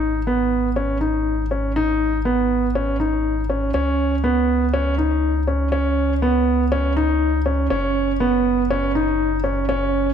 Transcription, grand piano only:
0.00 0.18 D#4 medium
0.27 0.67 B3 medium
0.76 0.97 C#4 medium
1.01 1.41 D#4 medium
1.51 1.71 C#4 medium
1.76 2.16 D#4 medium
2.25 2.65 B3 medium
2.75 2.95 C#4 medium
3.00 3.40 D#4 medium
3.50 3.70 C#4 medium
3.74 4.14 C#4 medium
4.24 4.64 B3 medium
4.74 4.94 C#4 medium
4.98 5.38 D#4 medium
5.47 5.68 C#4 medium
5.72 6.12 C#4 medium
6.22 6.62 B3 medium
6.72 6.92 C#4 medium
6.97 7.37 D#4 medium
7.46 7.66 C#4 medium
7.70 8.11 C#4 loud
8.20 8.60 B3 medium
8.70 8.91 C#4 medium
8.95 9.35 D#4 medium
9.44 9.64 C#4 medium
9.69 10.09 C#4 medium

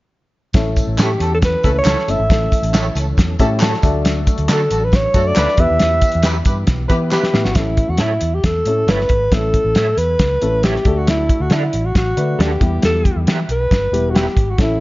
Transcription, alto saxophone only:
1.03 1.31 G4 medium
1.34 1.39 A4 medium
1.45 1.74 B4 medium
1.79 2.11 C#5 loud
2.10 2.97 E5 loud
4.53 4.86 A4 medium
4.85 4.97 B4 medium
4.95 5.29 C#5 loud
5.27 5.62 D5 medium
5.60 6.47 E5 loud
7.13 7.46 G4 medium
7.44 7.57 F#4 medium
7.56 7.92 E4 medium
7.90 8.00 F#4 medium
8.01 8.36 E4 medium
8.35 8.47 G4 medium
8.46 8.91 A4 medium
8.90 9.35 B4 medium
9.33 10.00 A4 loud
9.98 10.66 B4 medium
10.64 11.00 G4 medium
10.98 11.08 F#4 medium
11.10 11.43 E4 medium
11.42 11.54 F#4 medium
11.53 11.87 E4 medium
11.86 11.96 F#4 medium
11.98 12.42 F#4 medium
12.41 12.84 G4 medium
12.85 13.20 A4 medium
13.52 14.12 B4 medium
14.10 14.20 F#4 medium
14.19 14.52 G4 medium
14.51 14.60 F#4 medium
14.62 14.80 E4 medium

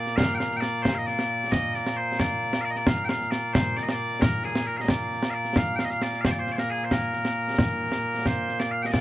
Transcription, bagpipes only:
0.00 9.01 A#2 medium
0.00 9.01 A#3 medium
0.00 0.16 D5 loud
0.16 0.34 F5 loud
0.34 0.56 F5 medium
0.34 0.38 G5 medium
0.56 0.60 G5 loud
0.60 0.82 D5 loud
0.82 0.94 C5 medium
0.94 1.06 D#5 medium
0.94 0.98 F5 medium
1.06 1.51 D5 loud
1.51 1.74 D#5 loud
1.74 1.97 D5 medium
1.97 2.19 C5 loud
2.19 2.61 D5 medium
2.61 2.70 D5 medium
2.61 2.65 F5 medium
2.70 2.76 D#5 medium
2.76 2.87 D5 medium
2.87 3.05 F5 loud
3.05 3.31 F5 medium
3.05 3.09 G5 medium
3.31 3.53 D5 medium
3.53 3.77 C5 medium
3.77 3.82 D5 medium
3.82 3.91 D#5 medium
3.91 4.22 D5 loud
4.22 4.44 A#4 medium
4.44 4.66 G#4 medium
4.66 4.77 A#4 medium
4.77 4.89 D#5 medium
4.77 4.81 F5 medium
4.89 5.30 D5 medium
5.30 5.57 D5 medium
5.30 5.34 F5 medium
5.57 5.76 F5 loud
5.76 5.85 F5 medium
5.76 5.79 G5 medium
5.85 5.90 D#5 medium
5.90 6.02 F5 medium
6.03 6.21 D5 loud
6.21 6.25 F5 medium
6.25 6.31 C5 medium
6.31 6.39 D5 medium
6.39 6.52 C5 medium
6.52 6.59 C5 medium
6.52 6.55 D5 medium
6.59 6.70 A#4 medium
6.70 6.84 G#4 medium
6.84 6.92 C5 medium
6.92 8.27 A#4 medium
8.27 8.60 C5 loud
8.60 8.71 D5 medium
8.71 8.82 F5 loud
8.82 8.92 D#5 medium
8.82 8.86 G5 medium
8.92 9.01 D5 loud

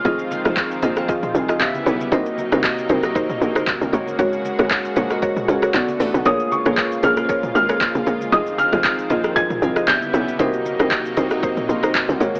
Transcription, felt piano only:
0.00 0.27 F6 loud
6.26 6.53 D#6 medium
6.52 7.05 C#6 medium
7.04 7.54 F6 medium
7.55 8.29 F6 loud
8.32 8.38 D#6 loud
8.58 9.38 F6 loud
9.36 9.89 G#6 loud
9.88 10.25 G6 loud

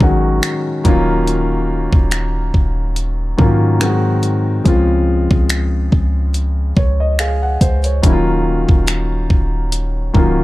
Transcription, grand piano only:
0.00 0.82 D#3 medium
0.00 0.83 F#3 medium
0.00 0.86 G#3 medium
0.00 0.85 C#4 medium
0.00 0.86 F#4 medium
0.84 2.32 D#3 medium
0.84 2.33 F#3 medium
0.84 2.33 A#3 medium
0.84 2.34 C#4 medium
0.84 2.34 F4 loud
3.37 3.78 D#3 medium
3.37 3.79 F#3 medium
3.37 3.81 A#3 medium
3.37 3.82 C#4 medium
3.37 3.82 F4 medium
3.80 4.54 D#3 medium
3.80 4.55 F#3 medium
3.80 4.55 G#3 medium
3.80 4.56 C4 medium
3.80 4.56 F#4 medium
4.64 6.13 C#3 medium
4.64 6.13 F3 medium
4.64 6.14 G#3 medium
4.64 6.14 C4 medium
4.64 6.15 F4 medium
6.78 6.98 C#5 medium
7.00 7.18 D#5 medium
7.20 7.59 G#4 medium
7.20 7.41 F5 medium
7.43 8.00 F#5 medium
7.62 7.83 C5 medium
7.85 8.25 C#5 medium
8.02 9.51 D#3 medium
8.02 9.51 F#3 medium
8.02 9.52 A#3 medium
8.02 9.52 C#4 medium
8.02 8.12 E4 medium
8.13 9.56 F4 medium
10.13 10.44 D#3 medium
10.13 10.44 F#3 medium
10.13 10.44 A#3 medium
10.13 10.44 C#4 medium
10.13 10.44 F4 medium

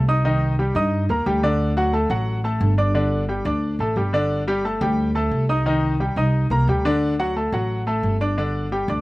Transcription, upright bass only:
0.00 0.69 C2 medium
0.75 1.06 G2 loud
1.09 1.25 D#2 medium
1.26 2.05 D2 medium
2.10 2.57 A1 loud
2.61 3.40 G1 loud
3.45 3.77 D2 loud
3.79 3.95 A1 medium
3.96 4.75 G1 medium
4.81 5.28 D2 loud
5.31 6.11 C2 medium
6.16 6.48 C2 medium
6.50 6.66 C2 medium
6.67 7.47 D2 medium
7.52 8.00 A1 loud
8.03 8.83 G1 medium
8.88 9.01 D2 loud

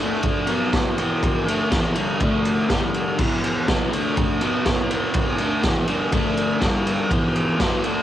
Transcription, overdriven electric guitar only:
0.00 0.47 D3 loud
0.00 0.48 A3 medium
0.00 0.48 D4 loud
0.48 0.96 B2 medium
0.48 0.97 F#3 medium
0.48 0.98 B3 medium
0.97 1.46 E2 loud
0.97 1.46 B2 loud
0.97 1.47 E3 loud
1.46 1.70 D3 medium
1.46 1.71 A3 loud
1.46 1.71 D4 loud
1.71 1.94 E2 medium
1.71 1.95 B2 medium
1.71 1.96 E3 medium
1.95 2.19 G2 loud
1.95 2.18 D3 medium
1.95 2.20 G3 medium
2.20 2.68 D3 medium
2.20 2.69 A3 medium
2.20 2.69 D4 loud
2.70 3.18 G2 medium
2.70 3.18 D3 medium
2.70 3.19 G3 loud
3.18 3.67 E2 medium
3.18 3.67 B2 medium
3.18 3.67 E3 loud
3.68 3.91 B2 medium
3.68 3.93 F#3 loud
3.68 3.94 B3 loud
3.91 4.40 D3 loud
3.91 4.41 A3 loud
3.91 4.41 D4 loud
4.41 4.89 B2 medium
4.41 4.90 F#3 medium
4.41 4.90 B3 loud
4.90 5.38 E2 medium
4.90 5.39 B2 loud
4.90 5.39 E3 loud
5.40 5.63 D3 medium
5.40 5.64 A3 loud
5.40 5.64 D4 loud
5.64 5.88 E2 loud
5.64 5.88 B2 loud
5.64 5.89 E3 loud
5.88 6.12 G2 loud
5.88 6.11 D3 loud
5.88 6.13 G3 medium
6.12 6.60 D3 loud
6.12 6.61 A3 loud
6.12 6.62 D4 loud
6.60 7.09 G2 loud
6.60 7.10 D3 loud
6.60 7.10 G3 loud
7.10 7.59 E2 medium
7.10 7.57 B2 loud
7.10 7.59 E3 loud
7.58 7.83 B2 loud
7.58 7.84 F#3 loud
7.58 7.84 B3 loud
7.83 8.03 D3 medium
7.83 8.03 A3 loud
7.83 8.03 D4 loud

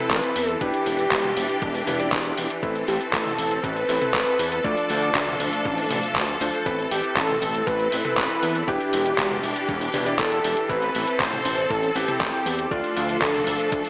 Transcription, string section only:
0.00 4.60 E3 medium
0.00 0.59 C4 medium
0.00 0.59 A4 medium
0.61 2.61 D4 medium
0.61 2.61 G4 medium
2.63 4.62 C4 medium
2.63 8.64 A4 loud
4.64 6.64 F3 medium
4.64 6.64 A3 medium
4.64 6.64 D4 medium
6.66 12.67 E3 medium
6.66 8.66 C4 medium
8.68 10.68 D4 medium
8.68 10.68 G4 loud
10.69 12.69 C4 medium
10.69 12.69 A4 loud
12.71 13.90 F3 medium
12.71 13.90 A3 medium
12.71 13.90 D4 medium
12.71 13.90 A4 medium

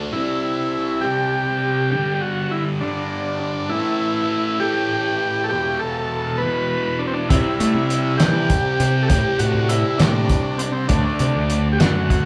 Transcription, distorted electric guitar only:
0.00 0.12 A3 medium
0.00 0.10 D4 medium
0.12 1.00 C3 medium
0.12 1.04 G3 loud
0.12 1.01 C4 medium
1.02 1.92 C3 medium
1.02 1.91 G3 medium
1.02 1.90 C4 medium
1.92 2.80 G2 medium
1.92 2.81 D3 medium
1.92 2.79 G3 loud
2.80 3.71 G2 medium
2.80 3.69 D3 medium
2.80 3.69 G3 medium
3.70 4.59 A2 medium
3.70 4.62 E3 medium
3.74 4.59 A3 medium
4.60 5.50 A2 medium
4.60 5.54 E3 medium
4.60 5.49 A3 medium
5.50 6.39 E2 medium
5.50 6.40 B2 medium
5.50 6.40 E3 medium
6.41 7.31 E2 medium
6.41 7.29 B2 medium
6.41 7.31 E3 medium
7.29 8.22 C3 medium
7.29 8.21 G3 medium
7.29 8.19 C4 medium
8.19 9.08 C3 medium
8.19 9.09 G3 medium
8.19 9.08 C4 medium
9.09 9.98 C3 medium
9.09 9.99 G3 loud
9.09 9.97 C4 loud
9.98 10.88 C3 medium
9.98 10.88 G3 medium
9.98 10.88 C4 medium
10.88 11.78 D3 medium
10.88 11.79 A3 medium
10.88 11.78 D4 loud
11.79 12.25 D3 medium
11.79 12.25 A3 medium
11.79 12.25 D4 medium

